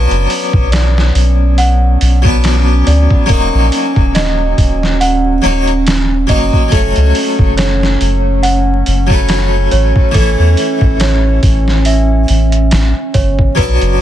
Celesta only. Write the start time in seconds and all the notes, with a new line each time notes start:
Already playing: B4
0.72 D5
1.58 F#5
2.87 D5
3.30 A#4
4.15 D#5
5.01 F#5
6.29 D#5
6.72 A4
7.57 C#5
8.43 F#5
9.72 C#5
10.15 A4
11.00 C#5
11.86 E5
13.14 C#5
13.57 B4